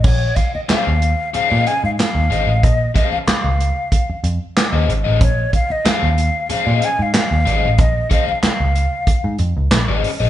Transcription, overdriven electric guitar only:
\new Staff \with { instrumentName = "Overdriven electric guitar" } { \time 4/4 \key bes \minor \tempo 4 = 93 r4 <des' aes' c'' f''>16 r8. <des' aes' c'' f''>16 <des' aes' c'' ees''>16 r4 <des' aes' c'' ees''>16 r16 | r8 <des' aes' c'' f''>16 r2 r8 <des' aes' c'' ees''>16 r16 <des' aes' c'' ees''>16 | r4 <des' aes' c'' f''>16 r8. <des' aes' c'' f''>16 <des' aes' c'' ees''>16 r4 <des' aes' c'' ees''>16 r16 | r8 <des' aes' c'' f''>16 r2 r8 <des' aes' c'' ees''>16 r16 <des' aes' c'' ees''>16 | }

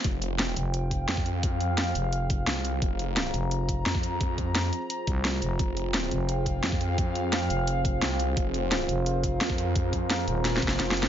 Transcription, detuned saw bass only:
\new Staff \with { instrumentName = "Detuned saw bass" } { \clef bass \time 4/4 \key f \minor \tempo 4 = 173 f,,4. r4. f,4~ | f,4. r4. c,4 | f,,4. r4. f,4~ | f,4. r2 r8 |
f,,4. r4. f,4~ | f,4. r4. c,4 | f,,4. r4. f,4~ | f,4. r4. f,,4 | }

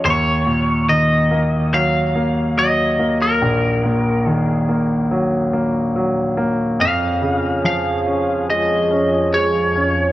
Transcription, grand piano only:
\new Staff \with { instrumentName = "Grand piano" } { \clef bass \time 4/4 \key ees \minor \tempo 4 = 71 ees,8 bes,8 ees8 bes8 ges8 bes8 ges8 bes8 | bes,,8 bes,8 ees8 bes8 ges8 bes8 ges8 bes8 | f,8 des8 f8 des'8 aes8 des'8 aes8 des'8 | }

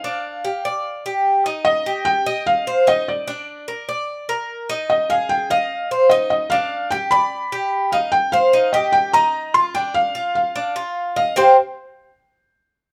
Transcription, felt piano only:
\new Staff \with { instrumentName = "Felt piano" } { \time 4/4 \key g \phrygian \tempo 4 = 148 f''2~ f''8 r4. | ees''4 g''4 f''4 ees''8 d''8~ | d''2~ d''8 r4. | ees''8 f''8 g''8 f''4. ees''8 ees''8 |
f''4 g''8 b''2 f''8 | \key c \minor g''8 f''4 ees''8 g''8 bes''4 c'''8 | g''8 f''4 f''2 f''8 | c''8 r2. r8 | }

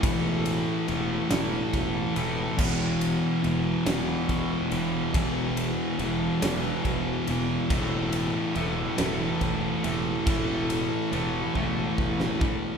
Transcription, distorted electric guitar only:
\new Staff \with { instrumentName = "Distorted electric guitar" } { \clef bass \time 6/8 \key a \lydian \tempo 4. = 47 <a, e a>4 <a, e a>8 <a, e a>4 <a, e a>8 | <e, b, e>4 <e, b, e>8 <e, b, e>4 <e, b, e>8 | <e, b, e>4 <e, b, e>8 <e, b, e>4 <e, b, e>8 | <a, e a>4 <a, e a>8 <a, e a>4 <a, e a>8 |
<a, e a>4 <a, e a>8 <a, e a>4 <a, e a>8 | }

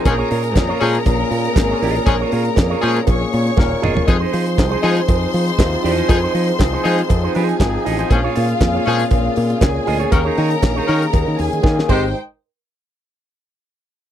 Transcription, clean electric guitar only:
\new Staff \with { instrumentName = "Clean electric guitar" } { \time 4/4 \key bes \dorian \tempo 4 = 119 r16 <f' aes' des''>16 <f' aes' des''>16 r8 <f' aes' des''>16 <f' aes' des''>16 r4. <f' aes' des''>16 <f' aes' ees''>8 | r16 <f' aes' des''>16 <f' aes' des''>16 r8 <f' aes' des''>16 <f' aes' des''>16 r4. r16 <f' aes' ees''>16 <f' aes' des''>16 | r16 <ees' aes' c''>16 <ees' aes' c''>16 r8 <ees' aes' c''>16 <ees' aes' c''>16 r4. r16 <ees' aes' ees''>16 <ees' aes' c''>16 | r16 <ees' aes' c''>16 <ees' aes' c''>16 r8 <ees' aes' c''>16 <ees' aes' c''>16 r8 <ees' aes' c''>16 <ees' aes' c''>8 r8 <ees' aes' ees''>16 <ees' aes' c''>16 |
r16 <f' aes' des''>16 <f' aes' des''>16 r8 <f' aes' des''>16 <f' aes' des''>16 r4. r16 <f' aes' ees''>16 <f' aes' des''>16 | r16 <ees' aes' des''>16 <ees' aes' des''>16 r8 <ees' aes' des''>16 <ees' aes' des''>16 r4. r16 <ees' g' c''>16 r16 | r1 | }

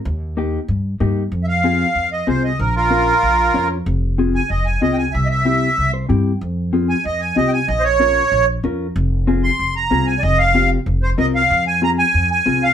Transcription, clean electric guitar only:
\new Staff \with { instrumentName = "Clean electric guitar" } { \time 4/4 \key f \minor \tempo 4 = 188 << { r1 | r1 | r1 | r1 |
r2 r8 c''8 g''4 | r1 | r1 | r1 |
r1 | r1 | } \\ { r4 <bes ees' g'>8 r4. <bes ees' g'>8 r8 | r4 <c' f' aes'>8 r4. <c' f' aes'>8 r8 | r4 <des' f' bes'>8 r4. <des' f' des''>8 r8 | r4 <c' f' aes'>8 r4. <c' f' aes'>8 r8 |
r4 <c' e' g'>8 r4. <c' e' g'>8 r8 | r4 <c' f' aes'>8 r4. <c' f' g'>8 r8 | r4 <des' f' bes'>8 r4. <des' f' bes'>8 r8 | r4 <c' f' aes'>8 r4. <c' f' aes'>8 r8 |
r4 <c' f' g'>8 r4. <c' f' bes'>8 r8 | r4 <c' f' aes'>8 r4. <c' f' aes'>8 r8 | } >> }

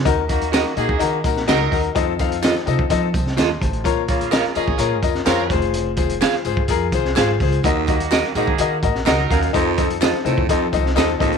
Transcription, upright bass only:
\new Staff \with { instrumentName = "Upright bass" } { \clef bass \time 4/4 \key ees \dorian \tempo 4 = 126 ees,4~ ees,16 r16 bes,16 ees,16 ees8 bes,,8 des,8 ees,8 | f,4~ f,16 r16 c16 f,16 f8 c,8 ees,8 a,,8 | bes,,4~ bes,,16 r16 f,16 bes,,16 bes,8 f,8 f,8 f,,8~ | f,,4~ f,,16 r16 aes,,16 ees,16 f,8 c,8 aes,,8 des,8 |
ees,4~ ees,16 r16 bes,16 ees,16 ees8 bes,,8 des,8 ees,8 | f,4~ f,16 r16 c16 f,16 f8 c,8 ees,8 a,,8 | }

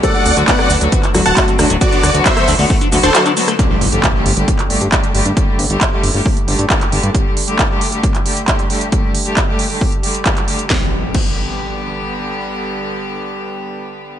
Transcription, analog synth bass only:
\new Staff \with { instrumentName = "Analog synth bass" } { \clef bass \time 4/4 \key g \major \tempo 4 = 135 r8 d,16 d,16 r8 d,16 d,16 r8 d,16 d,,16 r8 d,16 d,,16 | r8 d,16 d,16 r8 d,16 d,16 r8 d,16 d,,16 r4 | r8 g,,16 g,,16 r8 g,,16 g,,16 r8 g,,16 g,16 r8 g,,16 g,16 | r8 g,,16 g,,16 r8 g,,16 g,,16 r8 g,,16 g,16 r8 g,,16 g,16 |
r1 | r1 | r1 | r1 | }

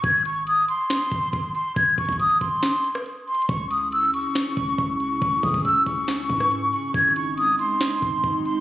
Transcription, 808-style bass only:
\new Staff \with { instrumentName = "808-style bass" } { \clef bass \time 4/4 \key cis \minor \tempo 4 = 139 gis,,4. r4 gis,,8 gis,,8 r8 | gis,,8 gis,,16 dis,16 gis,,8 gis,,8 r2 | cis,4. r4 cis,8 cis,4 | cis,8 cis16 bis,,16 cis,8 cis,4 gis,4 r8 |
gis,,4. r4 gis,,8 gis,,8 r8 | }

